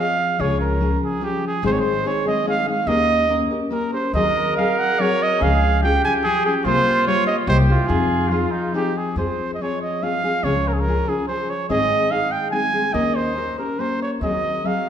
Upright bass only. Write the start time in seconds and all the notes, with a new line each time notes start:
0.40 C#2
1.63 G#1
2.87 D#2
4.13 D#2
5.41 C#2
6.65 C2
7.47 C2
7.89 F2
9.16 F2
10.43 C#2
11.70 G#1
12.94 D#2
14.21 D#2